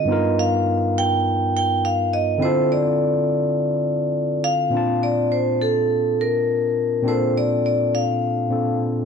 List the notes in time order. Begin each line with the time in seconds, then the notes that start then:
Already playing: D#5
0.05 G2 B3 D#4
0.11 F4 A#4
0.39 F5
0.98 G5
1.57 G5
1.85 F5
2.14 D#5
2.38 D3 C4 E4
2.42 F4 A4 C5
2.72 D5
4.44 F5
4.70 A#2 C4 D4
4.75 F4 A5
5.03 D5
5.32 C5
5.62 A4
6.21 A#4
7.02 A#2 C4 D4
7.07 F4 A4 C5
7.38 D5
7.66 D5
7.95 F5
8.49 A#2 C4 D4 F4 A4